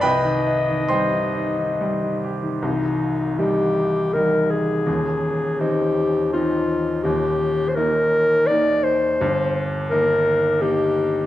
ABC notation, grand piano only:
X:1
M:3/4
L:1/16
Q:1/4=82
K:Cm
V:1 name="Grand piano"
[=Bg=b]4 [cgc']6 z2 | z12 | z12 | z12 |
z12 |]
V:2 name="Grand piano" clef=bass
C,, E, E E, G, E, E E, G, E, G E, | [C,,,C,,]4 [E,G,E]4 [E,G,E]4 | [E,,,E,,]4 [E,CE]4 [E,CE]4 | [E,,,E,,]4 [E,B,E]4 [E,B,E]4 |
[G,,,G,,]4 [E,B,E]4 [E,B,E]4 |]